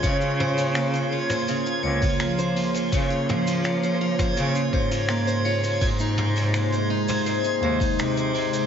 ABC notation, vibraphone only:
X:1
M:4/4
L:1/8
Q:1/4=83
K:Bbm
V:1 name="Vibraphone"
d z2 d z d z2 | d z d z2 d z d | z2 c z c z2 c |]